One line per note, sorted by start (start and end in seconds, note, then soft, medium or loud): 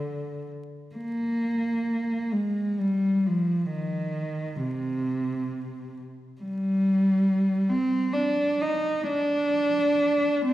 0.00 0.47 D3 soft
0.96 2.30 A#3 medium
2.32 2.79 G#3 soft
2.79 3.25 G3 soft
3.27 3.72 F3 soft
3.70 4.60 D#3 soft
4.63 5.99 C3 soft
6.41 7.68 G3 medium
7.70 8.15 C4 medium
8.13 8.61 D4 medium
8.61 9.08 D#4 medium
9.08 10.42 D4 medium
10.45 10.54 C4 medium